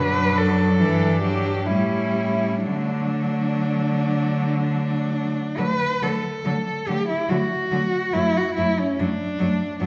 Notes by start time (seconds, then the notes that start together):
Already playing: F#2 F#3 D4 B4
0.38 A4
0.79 G2 E3 D4
1.22 F#3 G4
1.66 A2 G3 C#4 E4
2.66 D3 F#3 A3 D4
4.63 D4
5.58 D3 F#3 A3 B4
6.03 D3 F#3 A3 A4
6.44 D3 F#3 A3
6.87 D3 F#3 A3 G4
7.09 E4
7.29 D3 F#3 A3 F#4
7.71 D3 F#3 A3
8.13 F#2 F#3 A3 E4
8.37 F#4
8.56 F#2 F#3 A3 E4
8.79 C#4
8.99 F#2 F#3 A3 D4
9.39 F#2 F#3 A3
9.80 F#2 F#3 A3 D4